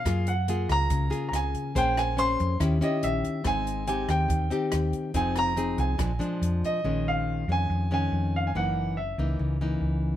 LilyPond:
<<
  \new Staff \with { instrumentName = "Grand piano" } { \time 4/4 \key bes \phrygian \tempo 4 = 142 f''8 ges''4 bes''8~ \tuplet 3/2 { bes''4~ bes''16 bes''16 } aes''4 | g''8 aes''8 c'''4 r8 ees''8 fes''4 | aes''4 aes''8 g''2~ g''8 | aes''8 bes''4 aes''2 ees''8~ |
\key bes \minor ees''8 f''4 aes''4 aes''8~ \tuplet 3/2 { aes''8. f''8 aes''16 } | ges''4 e''4 r2 | }
  \new Staff \with { instrumentName = "Nylon-string guitar" } { \time 4/4 \key bes \phrygian << { <bes f' aes'>8 r8 <bes f' aes'>4. <bes f' aes'>4. | <des' aes' c''>4 <des' aes' c''>4 <des' fes' g'>8 <des' fes' g'>4. | <c' ees'>4 <c' ees' g'>4. <c' ees' g'>4. | <c' ees' aes'>4 <c' ees' aes'>4 <f aes d'>8 <f aes d'>4. |
\key bes \minor <ees aes des'>4. <ees aes des'>4 <ees aes des'>4. | <e bes ees'>4 r8 <e bes ees'>4 <e bes ees'>4. | } \\ { ges2 des2 | bes2 ees2 | aes2 ees2 | f2 bes,2 |
bes,2 f,2 | ges,2 des2 | } >> }
  \new Staff \with { instrumentName = "Fingered electric bass" } { \clef bass \time 4/4 \key bes \phrygian ges,4. des,8 des,8 r8 des,8 r8 | bes,,4. f,8 ees,8 r8 bes,,8 r8 | aes,,4. ees,8 ees,8 r8 ees,8 r8 | f,,4. c,8 bes,,8 r8 f,8 r8 |
\key bes \minor bes,,4. f,8 f,4 f,4 | ges,,4. des,8 des,4 des,4 | }
  \new DrumStaff \with { instrumentName = "Drums" } \drummode { \time 4/4 <hh bd ss>8 hh8 hh8 <hh bd ss>8 <hh bd>8 hh8 <hh ss>8 <hh bd>8 | <hh bd>8 <hh ss>8 hh8 <hh bd>8 <hh bd ss>8 hh8 hh8 <hh bd>8 | <hh bd ss>8 hh8 hh8 <hh bd ss>8 <hh bd>8 hh8 <hh ss>8 <hh bd>8 | <hh bd>8 <hh ss>8 hh8 <hh bd>8 <hh bd ss>8 hh8 hh8 <hh bd>8 |
r4 r4 r4 r4 | r4 r4 r4 r4 | }
>>